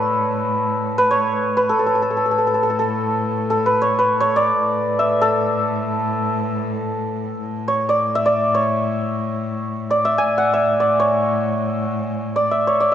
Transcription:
Already playing: cello A2, santur A4 B4 C#5
0.98 santur B4
1.11 santur C#5
1.57 santur B4
1.69 santur A4
1.79 cello A2, santur A4
1.86 santur A4
1.95 santur A4
2.02 santur A4
2.10 santur A4
2.17 santur A4
2.26 santur A4
2.31 santur A4
2.38 santur A4
2.47 santur A4
2.54 santur A4
2.63 santur A4
2.70 santur A4
2.79 santur A4
3.50 santur A4
3.66 santur B4
3.82 santur C#5
3.99 santur B4
4.20 santur C#5
4.36 santur D5
4.59 cello A2
4.99 santur E5
5.21 santur A4
7.41 cello A2
7.68 santur C#5
7.89 santur D5
8.15 santur E5
8.26 santur D5
8.55 santur C#5
9.90 santur D5
10.05 santur E5
10.18 santur G#5
10.24 cello A2
10.38 santur F#5
10.53 santur E5
10.80 santur D5
11.00 santur C#5
12.36 santur D5
12.51 santur E5
12.67 santur C#5
12.80 santur D5

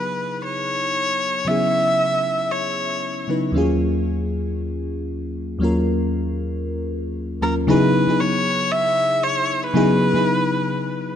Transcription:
Already playing: fm electric piano C#3 F#3 B3 D#4 E4 G#4, erhu B4
0.44 erhu C#5
1.45 fm electric piano C#3 F#3 B3 C#4, erhu E5
1.50 fm electric piano E4 G#4
2.51 erhu C#5
3.27 fm electric piano C#3 F#3 B3 D#4 E4 B4
3.52 fm electric piano D#2 F3 A#3 C#4
3.57 fm electric piano F#3 F4 G#4
5.59 fm electric piano D#2 F#3 A#3 C#4
5.63 fm electric piano F4 A#4
7.41 fm electric piano D#2 F#3 A#3 C#4 F4 A#4, erhu A#4
7.67 fm electric piano C#3 F#3 B3 D#4 E4 G#4, erhu B4
8.07 fm electric piano C#3 F#3 B3 D#4 E4 G#4
8.20 erhu C#5
8.72 erhu E5
9.24 erhu C#5
9.64 erhu B4
9.74 fm electric piano C#3 F#3 B3 D#4 E4 G#4
10.14 fm electric piano C#3 F#3 B3 D#4 E4 G#4

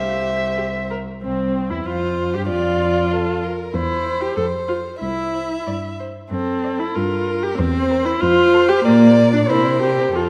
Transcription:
Already playing: cello C2, viola G4, violin C5 E5
0.57 viola G4
0.91 viola A#4
1.23 cello C2, viola C4, violin C4
1.71 cello E2, viola E4, violin E4
1.86 cello F2, violin F4 C5, viola F4
2.34 cello G2, violin G4, viola G4
2.49 cello F2, viola F4, violin F4 D5
3.12 violin A4
3.43 violin A#4
3.74 cello E2, viola E4, violin C5
4.05 violin C5
4.21 viola G4
4.37 cello F2, viola A4, violin C5
4.68 viola F4, violin C5
5.01 cello C2, viola E4, violin E5
5.34 violin C5
5.66 cello G2, violin D5
5.99 violin C5
6.31 cello F#2, viola C4, violin A4
6.64 violin D5
6.80 viola E4
6.95 cello G2, viola F4, violin A#4
7.28 violin A#4
7.43 viola G4
7.58 cello E2, viola C4, violin C5
7.91 violin A#4
8.05 viola E4
8.21 cello F2, viola F4, violin C5
8.54 violin A4
8.69 viola G4
8.85 cello A#2, viola A#3, violin D5
9.33 viola D4
9.49 cello C3, viola E4, violin A#4 C5
9.82 viola G4
10.15 cello F2, viola F4, violin A4

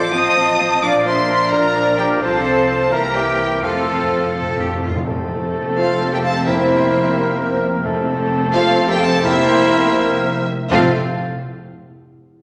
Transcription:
Already playing: french horn section F3 F4, cello section A4, clarinet C5, trumpet section C5, violin section D5 D6, flute section F5
0.13 double bass section A1, viola section F3 C4, bassoon F3, cello section C4, clarinet C5, cor anglais D#5, violin section D#5 D#6, flute section A5
0.36 viola section F3 C4
0.59 viola section F3 C4
0.82 double bass section A#1, viola section F3 D4, bassoon F3, cello section D4, french horn section D4, trumpet section A#4, violin section D5 D6, cor anglais D5, clarinet D5, flute section F5
1.05 viola section F3 D4, violin section C5 C6, cor anglais C5, flute section E5
1.28 viola section F3 D4
1.51 double bass section A#1, viola section F3 D4, bassoon F3, violin section A#4 A#5, cor anglais A#4, clarinet D5, flute section D5
1.74 viola section F3 D4
1.98 viola section F3 D4, violin section G4 G5, cor anglais G4, flute section A#4
2.21 double bass section C2, viola section F3 C4, bassoon F3, french horn section F3 C4, cello section F4, violin section A4 A5, cor anglais A4, trumpet section C5, flute section C5, clarinet C5
2.45 cello section A4
2.69 cello section F4
2.90 double bass section C2, french horn section E3 C4, viola section E3 A#3, bassoon E3, cello section G4, trumpet section A#4, violin section A#4 A#5, clarinet A#4, cor anglais A#4, flute section E5
3.15 violin section G4 G5, cor anglais G4, flute section A#4
3.61 timpani F2, double bass section F2, french horn section F3 C4, viola section F3 A3, bassoon F3, violin section F4 F5, cor anglais F4, flute section A4, clarinet A4, trumpet section A4, cello section A4
3.70 timpani F2
3.78 timpani F2
3.85 timpani F2
3.93 timpani F2
4.01 timpani F2
4.09 timpani F2
4.17 timpani F2
4.25 timpani F2
4.33 timpani F2, cello section A4
4.41 timpani F2
4.49 timpani F2
4.57 timpani F2, cello section G4
4.64 timpani F2
4.72 timpani F2
4.80 timpani F2
4.84 timpani F2, cello section F4
4.95 timpani F2
5.05 double bass section F1, cello section F2, timpani F2, bassoon C3, french horn section A3 C4, viola section A3 C4, cor anglais A4
5.76 clarinet F4, violin section A4 F5, flute section C5
6.11 clarinet G4, violin section A#4 G5, flute section E5
6.23 clarinet A4, violin section C5 A5, flute section F5
6.45 timpani F2, french horn section A#3, viola section A#3, clarinet E4, violin section G4 E5, cor anglais A#4, flute section C5
7.84 double bass section F1, timpani F2, cello section F2, bassoon C3, viola section A3 C4, french horn section A3 C4, cor anglais A4
8.52 clarinet F4, violin section A4 F5, flute section C5
8.87 clarinet G4, violin section A#4 G5, flute section E5
9.00 clarinet A4, violin section C5 A5, flute section F5
9.23 timpani F2, french horn section A#3, viola section A#3, clarinet E4, violin section G4 E5, cor anglais A#4, flute section C5
10.70 double bass section F1, timpani F2, cello section F2, bassoon C3, french horn section A3 C4, viola section A3 C4, violin section F4 F5, clarinet F4, cor anglais A4, flute section F5

